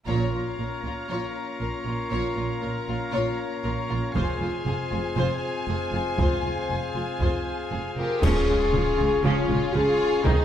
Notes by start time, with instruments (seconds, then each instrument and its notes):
0.06 double bass section A#1, cello section A#2, french horn section A#3 C#4, viola section F4, pipe organ F4 A#4 C#5 F5, violin section C#5 A#5, taiko
0.31 double bass section A#1, cello section A#2, viola section F4, violin section F4
0.58 double bass section A#1, cello section A#2, viola section F4, violin section A#4
0.82 double bass section A#1, cello section A#2, viola section F4, violin section F4, taiko
1.08 double bass section A#1, cello section A#2, viola section F4, violin section C#5
1.60 double bass section A#1, cello section A#2, viola section F4, violin section A#4
1.85 double bass section A#1, cello section A#2, viola section F4, violin section F4
2.10 double bass section A#1, cello section A#2, viola section F4, violin section C#5
2.35 double bass section A#1, cello section A#2, violin section F4, viola section F4
2.61 double bass section A#1, cello section A#2, viola section F4, violin section A#4
2.88 double bass section A#1, cello section A#2, viola section F4, violin section F4
3.12 double bass section A#1, cello section A#2, viola section F4, violin section C#5
3.64 double bass section A#1, cello section A#2, viola section F4, violin section A#4
3.90 double bass section A#1, cello section A#2, violin section F4, viola section F4
4.15 double bass section F1, cello section F2, french horn section G#3 C4, pipe organ F4 G#4 C5 F5, viola section F4, violin section C5 G#5, taiko
4.40 double bass section F1, cello section F2, viola section F4, violin section F4
4.66 double bass section F1, cello section F2, viola section F4, violin section G#4
4.91 double bass section F1, cello section F2, violin section F4, viola section F4
5.16 double bass section F1, cello section F2, viola section F4, violin section C5
5.68 double bass section F1, cello section F2, viola section F4, violin section G#4
5.92 double bass section F1, cello section F2, viola section F4, violin section F4
6.18 double bass section F1, cello section F2, viola section F4, violin section C5, taiko
6.44 double bass section F1, cello section F2, viola section F4, violin section F4
6.70 double bass section F1, cello section F2, viola section F4, violin section G#4
6.95 double bass section F1, cello section F2, viola section F4, violin section F4
7.20 double bass section F1, cello section F2, viola section F4, violin section C5, taiko
7.71 double bass section F1, cello section F2, viola section F4, violin section G#4
7.96 double bass section F1, cello section F2, viola section F4, violin section F4 G4 A#4, french horn section A#4
8.22 double bass section C#2, cello section C#3, viola section F3 C#4, pipe organ C#4 G#4 C#5 F5, violin section F4 G#4, french horn section G#4, concert bass drum, taiko, crash
8.47 double bass section C#2, cello section C#3, viola section C#3 G#3
8.72 double bass section C#2, cello section C#3, viola section C#3 F3, taiko low-mid
8.98 double bass section C#2, cello section C#3, viola section C#3 G#3
9.23 double bass section C#2, cello section C#3, viola section F3 C#4, violin section C#4 F4, french horn section F4
9.48 double bass section C#2, cello section C#3, viola section C#3 G#3, taiko low-mid
9.74 double bass section C#2, viola section C#3 F3, cello section C#3, violin section F4 G#4, french horn section G#4
10.24 double bass section C2, cello section C3, viola section D#3 D#4, violin section D#4 G#4, pipe organ D#4 C5 D#5, french horn section G#4, taiko